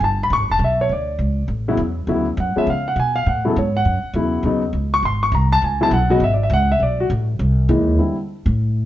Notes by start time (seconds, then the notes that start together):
0.00 G1 A5
0.23 B5
0.30 A1 C#6
0.40 G1
0.50 E1 A5
0.59 B1
0.64 E5
0.81 C#5
0.89 D2 D5
1.18 C#2
1.48 A1
1.68 C#3 F#3 B3 E4
1.77 E2
2.07 D2 C#3 F#3 B3 E4
2.37 F#2 F#5
2.56 F3 G#3 B3 C#4 E5, muted upright bass stroke
2.67 C#3 F5
2.88 F#5
2.96 B2 G#5
3.16 F5
3.26 A2 F#5
3.45 C#3 F#3 B3 E4 A4
3.56 G#2 C#5
3.77 F#5
3.85 F#2
4.03 muted upright bass stroke
4.14 E2 C#3 F#3 B3 E4
4.43 D#2 C#3 F#3 B3 D#4
4.73 C#2
4.94 C#6
5.03 G#1 C6
5.23 C#6
5.32 C2 A#5
5.53 A5
5.62 C#2 G#5
5.81 C#3 F#3 B3 E4 A5
5.91 B1 F#5
6.10 C#3 F#3 B3 F#4 D#5
6.20 G#1 E5
6.34 D5
6.43 E5
6.50 C#2 F#5
6.72 E5
6.80 B1 D5
7.00 F#4
7.10 A1
7.39 C2
7.69 D#2 E3 G#3 A#3 D#4
7.98 D3 G3 C4 E4
8.46 A2